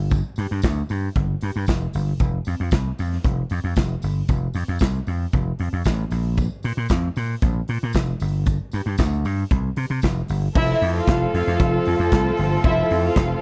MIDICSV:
0, 0, Header, 1, 6, 480
1, 0, Start_track
1, 0, Key_signature, -1, "major"
1, 0, Tempo, 521739
1, 110, Time_signature, 4, 2, 24, 8
1, 12344, End_track
2, 0, Start_track
2, 0, Title_t, "Violin section"
2, 0, Program_c, 0, 48
2, 9715, Note_on_c, 0, 64, 127
2, 9717, Note_on_c, 0, 76, 127
2, 9905, Note_off_c, 0, 64, 0
2, 9907, Note_off_c, 0, 76, 0
2, 10069, Note_on_c, 0, 77, 89
2, 10070, Note_on_c, 0, 65, 87
2, 10408, Note_off_c, 0, 77, 0
2, 10409, Note_off_c, 0, 65, 0
2, 10427, Note_on_c, 0, 65, 84
2, 10429, Note_on_c, 0, 77, 90
2, 10879, Note_off_c, 0, 65, 0
2, 10880, Note_off_c, 0, 77, 0
2, 11634, Note_on_c, 0, 64, 106
2, 11635, Note_on_c, 0, 76, 122
2, 11823, Note_off_c, 0, 64, 0
2, 11823, Note_off_c, 0, 76, 0
2, 11996, Note_on_c, 0, 77, 94
2, 12001, Note_on_c, 0, 65, 81
2, 12329, Note_off_c, 0, 77, 0
2, 12332, Note_off_c, 0, 65, 0
2, 12344, End_track
3, 0, Start_track
3, 0, Title_t, "String section"
3, 0, Program_c, 1, 48
3, 9709, Note_on_c, 1, 69, 96
3, 9711, Note_on_c, 1, 53, 78
3, 9713, Note_on_c, 1, 65, 84
3, 9714, Note_on_c, 1, 60, 74
3, 12344, Note_off_c, 1, 53, 0
3, 12344, Note_off_c, 1, 60, 0
3, 12344, Note_off_c, 1, 65, 0
3, 12344, Note_off_c, 1, 69, 0
3, 12344, End_track
4, 0, Start_track
4, 0, Title_t, "Horn section"
4, 0, Program_c, 2, 61
4, 9708, Note_on_c, 2, 65, 89
4, 9709, Note_on_c, 2, 57, 90
4, 9709, Note_on_c, 2, 69, 97
4, 9711, Note_on_c, 2, 53, 88
4, 12344, Note_off_c, 2, 53, 0
4, 12344, Note_off_c, 2, 57, 0
4, 12344, Note_off_c, 2, 65, 0
4, 12344, Note_off_c, 2, 69, 0
4, 12344, End_track
5, 0, Start_track
5, 0, Title_t, "Slap bass"
5, 0, Program_c, 3, 36
5, 0, Note_on_c, 3, 31, 84
5, 192, Note_off_c, 3, 31, 0
5, 349, Note_on_c, 3, 43, 93
5, 430, Note_off_c, 3, 43, 0
5, 471, Note_on_c, 3, 43, 78
5, 551, Note_off_c, 3, 43, 0
5, 585, Note_on_c, 3, 38, 86
5, 748, Note_off_c, 3, 38, 0
5, 829, Note_on_c, 3, 43, 84
5, 990, Note_off_c, 3, 43, 0
5, 1067, Note_on_c, 3, 31, 82
5, 1229, Note_off_c, 3, 31, 0
5, 1311, Note_on_c, 3, 43, 89
5, 1391, Note_off_c, 3, 43, 0
5, 1433, Note_on_c, 3, 43, 86
5, 1512, Note_off_c, 3, 43, 0
5, 1548, Note_on_c, 3, 29, 74
5, 1709, Note_off_c, 3, 29, 0
5, 1791, Note_on_c, 3, 31, 82
5, 1952, Note_off_c, 3, 31, 0
5, 2023, Note_on_c, 3, 29, 83
5, 2186, Note_off_c, 3, 29, 0
5, 2272, Note_on_c, 3, 41, 89
5, 2352, Note_off_c, 3, 41, 0
5, 2392, Note_on_c, 3, 41, 79
5, 2471, Note_off_c, 3, 41, 0
5, 2502, Note_on_c, 3, 36, 79
5, 2665, Note_off_c, 3, 36, 0
5, 2752, Note_on_c, 3, 41, 89
5, 2912, Note_off_c, 3, 41, 0
5, 2985, Note_on_c, 3, 29, 86
5, 3147, Note_off_c, 3, 29, 0
5, 3229, Note_on_c, 3, 41, 101
5, 3309, Note_off_c, 3, 41, 0
5, 3347, Note_on_c, 3, 41, 87
5, 3428, Note_off_c, 3, 41, 0
5, 3465, Note_on_c, 3, 29, 90
5, 3627, Note_off_c, 3, 29, 0
5, 3711, Note_on_c, 3, 31, 69
5, 3871, Note_off_c, 3, 31, 0
5, 3949, Note_on_c, 3, 29, 87
5, 4110, Note_off_c, 3, 29, 0
5, 4182, Note_on_c, 3, 41, 100
5, 4265, Note_off_c, 3, 41, 0
5, 4309, Note_on_c, 3, 41, 90
5, 4389, Note_off_c, 3, 41, 0
5, 4426, Note_on_c, 3, 36, 84
5, 4588, Note_off_c, 3, 36, 0
5, 4667, Note_on_c, 3, 41, 83
5, 4829, Note_off_c, 3, 41, 0
5, 4911, Note_on_c, 3, 29, 90
5, 5071, Note_off_c, 3, 29, 0
5, 5149, Note_on_c, 3, 41, 88
5, 5229, Note_off_c, 3, 41, 0
5, 5271, Note_on_c, 3, 41, 92
5, 5351, Note_off_c, 3, 41, 0
5, 5391, Note_on_c, 3, 33, 79
5, 5552, Note_off_c, 3, 33, 0
5, 5624, Note_on_c, 3, 34, 93
5, 5949, Note_off_c, 3, 34, 0
5, 6113, Note_on_c, 3, 46, 94
5, 6192, Note_off_c, 3, 46, 0
5, 6231, Note_on_c, 3, 46, 91
5, 6311, Note_off_c, 3, 46, 0
5, 6350, Note_on_c, 3, 41, 93
5, 6511, Note_off_c, 3, 41, 0
5, 6594, Note_on_c, 3, 46, 94
5, 6754, Note_off_c, 3, 46, 0
5, 6829, Note_on_c, 3, 34, 86
5, 6991, Note_off_c, 3, 34, 0
5, 7074, Note_on_c, 3, 46, 90
5, 7154, Note_off_c, 3, 46, 0
5, 7204, Note_on_c, 3, 46, 101
5, 7280, Note_off_c, 3, 46, 0
5, 7310, Note_on_c, 3, 29, 85
5, 7472, Note_off_c, 3, 29, 0
5, 7556, Note_on_c, 3, 31, 102
5, 7877, Note_off_c, 3, 31, 0
5, 8035, Note_on_c, 3, 43, 90
5, 8114, Note_off_c, 3, 43, 0
5, 8151, Note_on_c, 3, 43, 94
5, 8232, Note_off_c, 3, 43, 0
5, 8270, Note_on_c, 3, 38, 89
5, 8515, Note_off_c, 3, 38, 0
5, 8515, Note_on_c, 3, 43, 100
5, 8675, Note_off_c, 3, 43, 0
5, 8750, Note_on_c, 3, 36, 86
5, 8912, Note_off_c, 3, 36, 0
5, 8987, Note_on_c, 3, 48, 97
5, 9069, Note_off_c, 3, 48, 0
5, 9109, Note_on_c, 3, 48, 94
5, 9190, Note_off_c, 3, 48, 0
5, 9230, Note_on_c, 3, 29, 85
5, 9392, Note_off_c, 3, 29, 0
5, 9471, Note_on_c, 3, 31, 82
5, 9633, Note_off_c, 3, 31, 0
5, 9711, Note_on_c, 3, 29, 112
5, 9872, Note_off_c, 3, 29, 0
5, 9951, Note_on_c, 3, 41, 108
5, 10112, Note_off_c, 3, 41, 0
5, 10191, Note_on_c, 3, 29, 97
5, 10352, Note_off_c, 3, 29, 0
5, 10433, Note_on_c, 3, 41, 94
5, 10512, Note_off_c, 3, 41, 0
5, 10555, Note_on_c, 3, 41, 104
5, 10634, Note_off_c, 3, 41, 0
5, 10673, Note_on_c, 3, 29, 108
5, 10833, Note_off_c, 3, 29, 0
5, 10919, Note_on_c, 3, 41, 93
5, 10996, Note_off_c, 3, 41, 0
5, 11033, Note_on_c, 3, 41, 101
5, 11112, Note_off_c, 3, 41, 0
5, 11150, Note_on_c, 3, 36, 97
5, 11311, Note_off_c, 3, 36, 0
5, 11398, Note_on_c, 3, 31, 110
5, 11556, Note_off_c, 3, 31, 0
5, 11630, Note_on_c, 3, 29, 108
5, 11790, Note_off_c, 3, 29, 0
5, 11876, Note_on_c, 3, 41, 91
5, 12034, Note_off_c, 3, 41, 0
5, 12110, Note_on_c, 3, 29, 103
5, 12270, Note_off_c, 3, 29, 0
5, 12344, End_track
6, 0, Start_track
6, 0, Title_t, "Drums"
6, 96, Note_on_c, 9, 54, 60
6, 102, Note_on_c, 9, 42, 59
6, 106, Note_on_c, 9, 36, 112
6, 188, Note_off_c, 9, 54, 0
6, 194, Note_off_c, 9, 42, 0
6, 198, Note_off_c, 9, 36, 0
6, 329, Note_on_c, 9, 54, 50
6, 350, Note_on_c, 9, 46, 63
6, 421, Note_off_c, 9, 54, 0
6, 442, Note_off_c, 9, 46, 0
6, 570, Note_on_c, 9, 54, 94
6, 580, Note_on_c, 9, 42, 64
6, 584, Note_on_c, 9, 36, 110
6, 593, Note_on_c, 9, 38, 97
6, 599, Note_on_c, 9, 39, 76
6, 662, Note_off_c, 9, 54, 0
6, 672, Note_off_c, 9, 42, 0
6, 676, Note_off_c, 9, 36, 0
6, 685, Note_off_c, 9, 38, 0
6, 691, Note_off_c, 9, 39, 0
6, 819, Note_on_c, 9, 54, 48
6, 827, Note_on_c, 9, 46, 52
6, 911, Note_off_c, 9, 54, 0
6, 919, Note_off_c, 9, 46, 0
6, 1065, Note_on_c, 9, 36, 115
6, 1065, Note_on_c, 9, 42, 74
6, 1157, Note_off_c, 9, 36, 0
6, 1157, Note_off_c, 9, 42, 0
6, 1296, Note_on_c, 9, 46, 62
6, 1300, Note_on_c, 9, 54, 29
6, 1388, Note_off_c, 9, 46, 0
6, 1392, Note_off_c, 9, 54, 0
6, 1532, Note_on_c, 9, 54, 90
6, 1544, Note_on_c, 9, 42, 50
6, 1546, Note_on_c, 9, 36, 100
6, 1556, Note_on_c, 9, 38, 83
6, 1562, Note_on_c, 9, 39, 67
6, 1624, Note_off_c, 9, 54, 0
6, 1636, Note_off_c, 9, 42, 0
6, 1638, Note_off_c, 9, 36, 0
6, 1648, Note_off_c, 9, 38, 0
6, 1654, Note_off_c, 9, 39, 0
6, 1778, Note_on_c, 9, 46, 66
6, 1783, Note_on_c, 9, 54, 55
6, 1870, Note_off_c, 9, 46, 0
6, 1875, Note_off_c, 9, 54, 0
6, 2020, Note_on_c, 9, 54, 56
6, 2022, Note_on_c, 9, 42, 56
6, 2024, Note_on_c, 9, 36, 104
6, 2112, Note_off_c, 9, 54, 0
6, 2114, Note_off_c, 9, 42, 0
6, 2116, Note_off_c, 9, 36, 0
6, 2252, Note_on_c, 9, 54, 52
6, 2267, Note_on_c, 9, 46, 63
6, 2344, Note_off_c, 9, 54, 0
6, 2359, Note_off_c, 9, 46, 0
6, 2495, Note_on_c, 9, 54, 115
6, 2496, Note_on_c, 9, 42, 70
6, 2502, Note_on_c, 9, 36, 113
6, 2509, Note_on_c, 9, 38, 111
6, 2515, Note_on_c, 9, 39, 77
6, 2587, Note_off_c, 9, 54, 0
6, 2588, Note_off_c, 9, 42, 0
6, 2594, Note_off_c, 9, 36, 0
6, 2601, Note_off_c, 9, 38, 0
6, 2607, Note_off_c, 9, 39, 0
6, 2747, Note_on_c, 9, 46, 56
6, 2747, Note_on_c, 9, 54, 45
6, 2839, Note_off_c, 9, 46, 0
6, 2839, Note_off_c, 9, 54, 0
6, 2875, Note_on_c, 9, 38, 29
6, 2967, Note_off_c, 9, 38, 0
6, 2974, Note_on_c, 9, 54, 32
6, 2985, Note_on_c, 9, 36, 116
6, 2987, Note_on_c, 9, 42, 79
6, 3066, Note_off_c, 9, 54, 0
6, 3077, Note_off_c, 9, 36, 0
6, 3079, Note_off_c, 9, 42, 0
6, 3217, Note_on_c, 9, 46, 57
6, 3218, Note_on_c, 9, 54, 31
6, 3309, Note_off_c, 9, 46, 0
6, 3310, Note_off_c, 9, 54, 0
6, 3458, Note_on_c, 9, 54, 84
6, 3461, Note_on_c, 9, 42, 52
6, 3465, Note_on_c, 9, 36, 102
6, 3473, Note_on_c, 9, 38, 90
6, 3479, Note_on_c, 9, 39, 67
6, 3550, Note_off_c, 9, 54, 0
6, 3553, Note_off_c, 9, 42, 0
6, 3557, Note_off_c, 9, 36, 0
6, 3565, Note_off_c, 9, 38, 0
6, 3571, Note_off_c, 9, 39, 0
6, 3697, Note_on_c, 9, 46, 63
6, 3700, Note_on_c, 9, 54, 64
6, 3789, Note_off_c, 9, 46, 0
6, 3792, Note_off_c, 9, 54, 0
6, 3940, Note_on_c, 9, 54, 63
6, 3944, Note_on_c, 9, 42, 61
6, 3946, Note_on_c, 9, 36, 107
6, 4032, Note_off_c, 9, 54, 0
6, 4036, Note_off_c, 9, 42, 0
6, 4038, Note_off_c, 9, 36, 0
6, 4173, Note_on_c, 9, 54, 50
6, 4190, Note_on_c, 9, 46, 65
6, 4265, Note_off_c, 9, 54, 0
6, 4282, Note_off_c, 9, 46, 0
6, 4408, Note_on_c, 9, 54, 102
6, 4422, Note_on_c, 9, 42, 69
6, 4425, Note_on_c, 9, 36, 105
6, 4436, Note_on_c, 9, 38, 107
6, 4442, Note_on_c, 9, 39, 84
6, 4500, Note_off_c, 9, 54, 0
6, 4514, Note_off_c, 9, 42, 0
6, 4517, Note_off_c, 9, 36, 0
6, 4528, Note_off_c, 9, 38, 0
6, 4534, Note_off_c, 9, 39, 0
6, 4661, Note_on_c, 9, 54, 44
6, 4672, Note_on_c, 9, 46, 62
6, 4753, Note_off_c, 9, 54, 0
6, 4764, Note_off_c, 9, 46, 0
6, 4895, Note_on_c, 9, 54, 35
6, 4907, Note_on_c, 9, 36, 118
6, 4911, Note_on_c, 9, 42, 73
6, 4987, Note_off_c, 9, 54, 0
6, 4999, Note_off_c, 9, 36, 0
6, 5003, Note_off_c, 9, 42, 0
6, 5141, Note_on_c, 9, 46, 55
6, 5233, Note_off_c, 9, 46, 0
6, 5377, Note_on_c, 9, 54, 91
6, 5384, Note_on_c, 9, 42, 53
6, 5387, Note_on_c, 9, 36, 95
6, 5396, Note_on_c, 9, 38, 92
6, 5402, Note_on_c, 9, 39, 68
6, 5469, Note_off_c, 9, 54, 0
6, 5476, Note_off_c, 9, 42, 0
6, 5479, Note_off_c, 9, 36, 0
6, 5488, Note_off_c, 9, 38, 0
6, 5494, Note_off_c, 9, 39, 0
6, 5617, Note_on_c, 9, 46, 70
6, 5623, Note_on_c, 9, 54, 56
6, 5709, Note_off_c, 9, 46, 0
6, 5715, Note_off_c, 9, 54, 0
6, 5862, Note_on_c, 9, 54, 61
6, 5867, Note_on_c, 9, 36, 104
6, 5867, Note_on_c, 9, 42, 55
6, 5954, Note_off_c, 9, 54, 0
6, 5959, Note_off_c, 9, 36, 0
6, 5959, Note_off_c, 9, 42, 0
6, 6098, Note_on_c, 9, 54, 47
6, 6113, Note_on_c, 9, 46, 62
6, 6190, Note_off_c, 9, 54, 0
6, 6205, Note_off_c, 9, 46, 0
6, 6336, Note_on_c, 9, 54, 96
6, 6344, Note_on_c, 9, 42, 65
6, 6347, Note_on_c, 9, 36, 109
6, 6357, Note_on_c, 9, 38, 95
6, 6363, Note_on_c, 9, 39, 82
6, 6428, Note_off_c, 9, 54, 0
6, 6436, Note_off_c, 9, 42, 0
6, 6439, Note_off_c, 9, 36, 0
6, 6449, Note_off_c, 9, 38, 0
6, 6455, Note_off_c, 9, 39, 0
6, 6586, Note_on_c, 9, 54, 49
6, 6595, Note_on_c, 9, 46, 60
6, 6678, Note_off_c, 9, 54, 0
6, 6687, Note_off_c, 9, 46, 0
6, 6821, Note_on_c, 9, 54, 31
6, 6829, Note_on_c, 9, 36, 120
6, 6831, Note_on_c, 9, 42, 68
6, 6913, Note_off_c, 9, 54, 0
6, 6921, Note_off_c, 9, 36, 0
6, 6923, Note_off_c, 9, 42, 0
6, 7064, Note_on_c, 9, 46, 65
6, 7156, Note_off_c, 9, 46, 0
6, 7294, Note_on_c, 9, 54, 90
6, 7307, Note_on_c, 9, 42, 61
6, 7309, Note_on_c, 9, 36, 89
6, 7320, Note_on_c, 9, 38, 100
6, 7326, Note_on_c, 9, 39, 70
6, 7386, Note_off_c, 9, 54, 0
6, 7399, Note_off_c, 9, 42, 0
6, 7401, Note_off_c, 9, 36, 0
6, 7412, Note_off_c, 9, 38, 0
6, 7418, Note_off_c, 9, 39, 0
6, 7541, Note_on_c, 9, 46, 64
6, 7544, Note_on_c, 9, 54, 61
6, 7633, Note_off_c, 9, 46, 0
6, 7636, Note_off_c, 9, 54, 0
6, 7782, Note_on_c, 9, 54, 62
6, 7788, Note_on_c, 9, 42, 62
6, 7789, Note_on_c, 9, 36, 117
6, 7874, Note_off_c, 9, 54, 0
6, 7880, Note_off_c, 9, 42, 0
6, 7881, Note_off_c, 9, 36, 0
6, 8018, Note_on_c, 9, 54, 49
6, 8033, Note_on_c, 9, 46, 58
6, 8110, Note_off_c, 9, 54, 0
6, 8125, Note_off_c, 9, 46, 0
6, 8258, Note_on_c, 9, 54, 112
6, 8265, Note_on_c, 9, 42, 71
6, 8268, Note_on_c, 9, 36, 110
6, 8278, Note_on_c, 9, 38, 91
6, 8284, Note_on_c, 9, 39, 74
6, 8350, Note_off_c, 9, 54, 0
6, 8357, Note_off_c, 9, 42, 0
6, 8360, Note_off_c, 9, 36, 0
6, 8370, Note_off_c, 9, 38, 0
6, 8376, Note_off_c, 9, 39, 0
6, 8508, Note_on_c, 9, 54, 46
6, 8511, Note_on_c, 9, 46, 65
6, 8600, Note_off_c, 9, 54, 0
6, 8603, Note_off_c, 9, 46, 0
6, 8749, Note_on_c, 9, 36, 127
6, 8752, Note_on_c, 9, 42, 75
6, 8841, Note_off_c, 9, 36, 0
6, 8844, Note_off_c, 9, 42, 0
6, 8982, Note_on_c, 9, 46, 62
6, 9074, Note_off_c, 9, 46, 0
6, 9217, Note_on_c, 9, 54, 80
6, 9226, Note_on_c, 9, 42, 50
6, 9230, Note_on_c, 9, 36, 82
6, 9239, Note_on_c, 9, 38, 90
6, 9245, Note_on_c, 9, 39, 78
6, 9309, Note_off_c, 9, 54, 0
6, 9318, Note_off_c, 9, 42, 0
6, 9322, Note_off_c, 9, 36, 0
6, 9331, Note_off_c, 9, 38, 0
6, 9337, Note_off_c, 9, 39, 0
6, 9461, Note_on_c, 9, 46, 67
6, 9469, Note_on_c, 9, 54, 60
6, 9553, Note_off_c, 9, 46, 0
6, 9561, Note_off_c, 9, 54, 0
6, 9708, Note_on_c, 9, 49, 111
6, 9710, Note_on_c, 9, 36, 119
6, 9800, Note_off_c, 9, 49, 0
6, 9802, Note_off_c, 9, 36, 0
6, 9954, Note_on_c, 9, 46, 75
6, 10046, Note_off_c, 9, 46, 0
6, 10187, Note_on_c, 9, 42, 74
6, 10189, Note_on_c, 9, 36, 115
6, 10200, Note_on_c, 9, 38, 115
6, 10206, Note_on_c, 9, 39, 92
6, 10279, Note_off_c, 9, 42, 0
6, 10281, Note_off_c, 9, 36, 0
6, 10292, Note_off_c, 9, 38, 0
6, 10298, Note_off_c, 9, 39, 0
6, 10437, Note_on_c, 9, 46, 66
6, 10529, Note_off_c, 9, 46, 0
6, 10563, Note_on_c, 9, 38, 35
6, 10655, Note_off_c, 9, 38, 0
6, 10670, Note_on_c, 9, 36, 127
6, 10671, Note_on_c, 9, 42, 88
6, 10762, Note_off_c, 9, 36, 0
6, 10763, Note_off_c, 9, 42, 0
6, 10904, Note_on_c, 9, 46, 72
6, 10996, Note_off_c, 9, 46, 0
6, 11147, Note_on_c, 9, 42, 59
6, 11150, Note_on_c, 9, 36, 102
6, 11160, Note_on_c, 9, 38, 103
6, 11166, Note_on_c, 9, 39, 85
6, 11239, Note_off_c, 9, 42, 0
6, 11242, Note_off_c, 9, 36, 0
6, 11252, Note_off_c, 9, 38, 0
6, 11258, Note_off_c, 9, 39, 0
6, 11382, Note_on_c, 9, 46, 75
6, 11474, Note_off_c, 9, 46, 0
6, 11629, Note_on_c, 9, 42, 70
6, 11631, Note_on_c, 9, 36, 127
6, 11721, Note_off_c, 9, 42, 0
6, 11723, Note_off_c, 9, 36, 0
6, 11875, Note_on_c, 9, 46, 72
6, 11967, Note_off_c, 9, 46, 0
6, 12107, Note_on_c, 9, 42, 75
6, 12109, Note_on_c, 9, 36, 117
6, 12120, Note_on_c, 9, 38, 115
6, 12126, Note_on_c, 9, 39, 82
6, 12199, Note_off_c, 9, 42, 0
6, 12201, Note_off_c, 9, 36, 0
6, 12212, Note_off_c, 9, 38, 0
6, 12218, Note_off_c, 9, 39, 0
6, 12344, End_track
0, 0, End_of_file